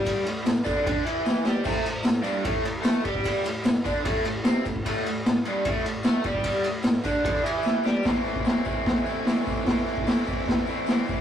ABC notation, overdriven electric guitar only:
X:1
M:4/4
L:1/8
Q:1/4=150
K:Am
V:1 name="Overdriven electric guitar"
[G,G] A,, A,, [D,D] [D,D] [E,E]2 [G,G] | [A,,A,] A,, A,, [G,,G,] [A,,A,] A,, [A,A] [G,G]- | [G,G] A,, A,, [D,D] [A,,A,] A,, [C,C] A,, | [A,,A,] A,, A,, [G,,G,] [A,,A,] A,, [A,A] [G,G]- |
[G,G] A,, A,, [D,D] [D,D] [E,E]2 [G,G] | [A,,E,A,CE] [A,CE] [E,A,CE] [A,CE]2 [A,CE] [A,,E,A,CE]2 | [A,,E,A,CE] [A,CE] [E,A,CE] [A,CE]2 [A,CE] [A,,E,A,CE]2 |]